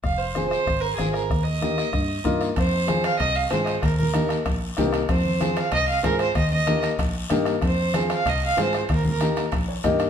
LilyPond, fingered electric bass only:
\new Staff \with { instrumentName = "Fingered electric bass" } { \clef bass \time 4/4 \key f \minor \tempo 4 = 190 f,,2 aes,,4 aes,,4 | ees,2 g,4 g,4 | f,2 c,4 aes,4 | ees,2 bes,,4 c,4 |
f,2 c,4 aes,4 | ees,2 bes,,4 g,4 | f,2 c,4 aes,4 | ees,2 bes,,4 g,4 | }